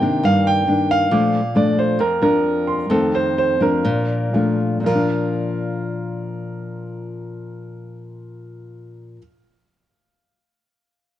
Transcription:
Already playing: C3 G5
0.01 D#3 A#3 D4
0.23 G2 F5
0.47 G5
0.67 D#3 A#3 D4
0.91 F5
1.11 A#2 F3 A3 D4 D6
1.55 F3 A3 D4 D5
1.79 C5
1.99 F2 A#4
2.22 F3 D4 A#4
2.67 C6
2.90 F2 D#3 A3 C4 A4
3.15 C5
3.38 C5
3.60 F3 D4 A#4
3.85 A#2
4.33 F3 A3 D4 F5
4.80 A#2
4.84 F3 A#4 F5
4.95 D4

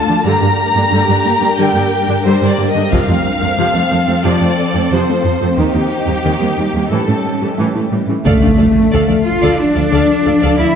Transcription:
Already playing: A3 D4 F4 A4 F5 A5
0.08 D2 D3 F3 D4
0.25 G2 D3 G3 G4 A#4 G5 A#5
0.41 G2 D3 D4 G4
0.75 G2 D3 A#3 D4
0.91 G2 D3 G3
1.08 G2 D3 A#3 D4
1.24 G2 D3 A#3
1.41 G2 D3 A#3 D4
1.58 G2 D3 G3 G5
1.74 G2 D3 A#3 D4
2.07 G2 D3 D4 G4
2.25 G2 D3 G3 C5
2.41 G2 D3 D4
2.49 D5
2.58 G2 D3 A#3 G4
2.71 G2 D4 D#5
2.75 D3 A#3
2.90 F2 C3 F3 C4 C5 F5, taiko
3.08 F2 F3 A3 F4
3.41 F2 F3 A3
3.58 F2 C3 F3 A4
3.74 F2 F3 A3
3.91 F2 F3 A3
4.07 F2 F3 A3
4.24 F2 C3 F3 D5
4.40 F2 F3 A3
4.74 F2 F3 A3 F4
4.90 F2 C3 F3 C5
5.07 F2 F3 A3 C4
5.24 F2 F3 F4
5.41 F2 F3 A3
5.58 D#2 D#3 G3 D#4 G4
5.74 D#2 D#3 A#3 D#4
6.07 D#2 D#3 G3 A#3
6.24 D#2 D#3
6.40 D#2 D#3 G3 A#3
6.58 D#2 D#3 G3
6.74 D#2 D#3 G3 A#3
6.91 A2 E3 A3 C#4 A4
7.07 A2 E3 A3 C#4
7.41 A2 E3 A3 G4
7.58 A2 E3 A3
7.74 A2 E3 A3 E4
7.91 A2 E3 G3 G4
8.07 A2 E3 A3 C#4
8.24 D2 D3 F3 A3 D4 A4 D5 F5, taiko, impact
8.42 D2 D4 A4 D5 F5
8.58 D2 F3 A4 D5 F5
8.92 D2 D3 A4 D5 F5
9.07 D2 F3 A4 D5 F5
9.25 F4
9.41 D2 D3 A4 D5 F5
9.58 D4
9.75 D2 F3 A4 D5 F5
9.92 D2 D3 A4 D5 F5
10.25 D2 D4 A4 D5 F5
10.42 D2 D3 A4 D5 F5
10.58 D2 D4 E4 A4 D5 F5

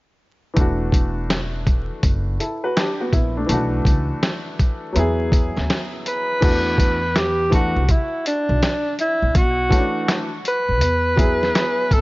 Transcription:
0.54 E1 E3 A3, kick, closed hi-hat
0.58 D4 F#4
0.92 kick, closed hi-hat
1.30 snare, closed hi-hat
1.67 kick, closed hi-hat
2.03 F#1, kick, closed hi-hat
2.40 E4 A4, closed hi-hat
2.64 F#4 B4
2.76 D4 G4, snare, closed hi-hat
3.01 B3 F#4
3.13 A#1 B3 E4, kick, closed hi-hat
3.37 A3 D4
3.46 B1 E3 A3, closed hi-hat
3.51 D4 F#4
3.85 C#2, kick, closed hi-hat
4.23 snare, closed hi-hat
4.59 kick, closed hi-hat
4.93 E2 F#3 B3, closed hi-hat
4.97 E4 G#4
5.32 kick, closed hi-hat
5.57 D2, snare
5.70 snare, closed hi-hat
6.06 B4, closed hi-hat
6.41 E2 E3 A3 D4 F#4, kick, closed hi-hat, crash
6.78 kick, closed hi-hat
7.16 G4, snare, closed hi-hat
7.50 E3 A3 D4 F#4, kick, closed hi-hat
7.54 F#4
7.76 C2
7.89 E4, kick, closed hi-hat
8.26 D4, closed hi-hat
8.49 B1
8.63 snare, closed hi-hat
8.99 E4, closed hi-hat
9.22 A#1
9.35 B1 F#4, kick, closed hi-hat
9.69 E3 A3 C#4 F#4, kick, closed hi-hat
9.78 D4
10.08 snare, closed hi-hat
10.45 B4, closed hi-hat
10.69 A1
10.81 E2, closed hi-hat
11.16 F#3 B3 E4 G#4, kick, closed hi-hat
11.43 snare
11.55 snare, closed hi-hat
11.91 G#1 A4, kick, closed hi-hat

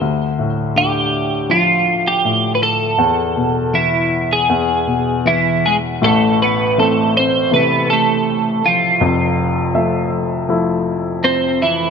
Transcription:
0.01 D2
0.39 A2
0.76 D3 G4
1.50 F3 F4
2.08 G4
2.25 A2
2.55 B4
2.63 A4
2.98 E2
3.37 B2
3.74 E3 E4
4.33 G#4
4.49 E2
4.87 B2
5.25 E3 E4
5.66 G#3 G#4
6.02 A1 A2 A4
6.06 A3
6.42 B3 B4
6.78 E3 A3 C4 A4
6.83 A3
7.17 C4 C5
7.51 C3 E3 A3 B4
7.56 B3
7.90 A3 A4
8.66 F3 F4
9.00 F1 F2
9.75 F3 A3 E5
10.49 F3 A3 E4
11.24 C4 C5
11.62 E3 E4

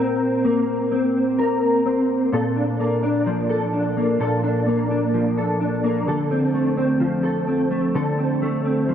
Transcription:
Already playing: A#2 C4 A#4
0.45 A#3
0.92 C4
1.39 A#4
1.86 C4
2.32 A#2 A4
2.56 D4
2.80 A#3
3.03 D4
3.26 F3
3.49 A4
3.73 D4
3.97 A#3
4.20 A#2 A4
4.43 D4
4.66 A#3
4.90 D4
5.14 F3
5.38 A4
5.60 D4
5.84 A#3
6.07 D3 A4
6.31 C4
6.54 A3
6.77 C4
7.00 F3
7.23 A4
7.47 C4
7.71 A3
7.95 D3 A4
8.18 C4
8.42 A3
8.65 C4
8.88 F3

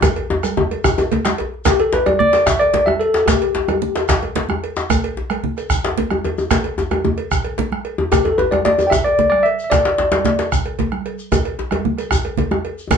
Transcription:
0.02 bombo rim, bombo low, cowbell, djembe slap, high conga, djembe tone, low conga, djembe bass, shekere
0.16 bombo rim, cowbell, djembe tone
0.30 djembe slap, djembe tone
0.43 bombo rim, cowbell, djembe slap, high conga, shekere
0.57 djembe tone, high conga, low conga
0.71 cowbell, djembe slap, high conga
0.84 bombo rim, bombo low, djembe slap, djembe tone, djembe bass, shekere
0.98 bombo rim, cowbell, djembe slap, djembe tone, shekere
1.12 cowbell, djembe slap, low conga
1.25 bombo rim, djembe slap, high conga, shekere
1.27 djembe slap
1.38 cowbell, djembe tone
1.54 djembe slap
1.65 G4, bombo rim, bombo low, cowbell, djembe slap, low conga, djembe bass, shekere
1.80 A4, cowbell
1.93 B4, bombo rim, djembe slap, djembe tone, high conga
2.06 D5, bombo rim, cowbell, djembe tone, high conga
2.19 D5, high conga, low conga
2.33 bombo rim, cowbell, djembe slap, shekere
2.46 E5, bombo rim, bombo low, djembe slap, high conga, djembe bass, shekere
2.60 D5, bombo rim, cowbell, djembe slap, high conga
2.74 cowbell, djembe slap, djembe tone, low conga
2.86 E5, bombo rim, high conga, djembe tone
3.00 A4, cowbell
3.14 djembe slap, shekere
3.20 A4
3.26 G4, bombo rim, bombo low, cowbell, djembe slap, low conga, djembe bass, shekere
3.42 cowbell
3.55 bombo rim, djembe slap, high conga, djembe tone
3.68 bombo rim, cowbell, high conga, djembe tone
3.82 high conga, low conga
3.96 bombo rim, cowbell, djembe slap, shekere
4.09 bombo rim, bombo low, djembe slap, high conga, djembe bass, shekere
4.22 bombo rim, cowbell, djembe slap, high conga
4.36 bombo rim, cowbell, djembe slap, djembe tone, low conga
4.49 bombo rim, djembe slap, high conga, djembe tone
4.64 cowbell
4.77 djembe slap, shekere
4.90 bombo rim, bombo low, cowbell, djembe slap, low conga, djembe bass, shekere
5.04 cowbell
5.17 djembe slap, djembe tone
5.30 bombo rim, cowbell, high conga
5.44 high conga, low conga
5.57 bombo rim, cowbell, shekere
5.70 bombo rim, bombo low, djembe slap, high conga, djembe bass, shekere
5.84 bombo rim, cowbell, djembe slap, high conga
5.98 bombo rim, cowbell, djembe slap, djembe tone, low conga
6.11 bombo rim, djembe slap, high conga, djembe tone
6.24 cowbell, djembe tone
6.38 djembe tone, shekere
6.51 bombo rim, bombo low, cowbell, djembe slap, high conga, low conga, djembe bass, shekere
6.64 cowbell
6.78 djembe slap, djembe tone, shekere
6.91 bombo rim, cowbell, djembe slap, high conga, djembe tone
7.05 djembe slap, djembe tone, low conga
7.18 cowbell
7.32 bombo rim, bombo low, djembe bass, shekere
7.44 bombo rim, cowbell, high conga
7.58 bombo rim, cowbell, djembe slap, djembe tone, low conga
7.72 bombo rim, high conga
7.85 cowbell
7.98 djembe tone
8.12 G4, bombo rim, bombo low, cowbell, djembe slap, low conga, djembe bass, shekere
8.24 A4, cowbell, djembe tone
8.38 B4, bombo rim, djembe slap, djembe tone, high conga
8.51 D5, bombo rim, cowbell, djembe tone, high conga
8.65 D5, djembe slap, high conga, low conga
8.78 bombo rim, cowbell, djembe tone, shekere
8.87 E5 G5
8.91 bombo rim, bombo low, djembe slap, djembe tone, high conga, djembe bass, shekere
9.04 D5, bombo rim, cowbell, djembe slap, high conga
9.19 bombo rim, cowbell, djembe slap, djembe tone, low conga
9.30 D5, bombo rim, high conga
9.43 E5, cowbell
9.59 shekere
9.64 E5
9.70 D5, bombo rim, bombo low, cowbell, djembe slap, low conga, djembe bass, shekere
9.85 cowbell, djembe slap
9.98 bombo rim, djembe slap, high conga, djembe tone
10.11 bombo rim, cowbell, djembe slap, high conga
10.25 djembe slap, high conga, low conga
10.39 bombo rim, cowbell, djembe slap, shekere
10.51 bombo rim, bombo low, djembe slap, high conga, djembe bass, shekere
10.65 bombo rim, cowbell, djembe slap, high conga
10.79 bombo rim, cowbell, djembe slap, djembe tone, low conga
10.92 bombo rim, djembe slap, high conga
11.06 cowbell
11.19 shekere
11.32 bombo rim, bombo low, cowbell, djembe slap, djembe tone, djembe bass, low conga, shekere
11.45 cowbell
11.59 bombo rim, djembe slap, high conga, djembe tone
11.71 bombo rim, cowbell, high conga, djembe tone
11.85 low conga
11.98 bombo rim, cowbell, shekere
12.11 bombo rim, bombo low, djembe slap, djembe tone, high conga, djembe bass, shekere
12.25 bombo rim, cowbell, djembe slap, high conga
12.37 bombo rim, cowbell, djembe slap, djembe tone, low conga
12.51 bombo rim, djembe slap, high conga, djembe tone
12.65 cowbell
12.78 shekere
12.91 bombo rim, bombo low, cowbell, high conga, djembe tone, djembe bass, low conga, shekere

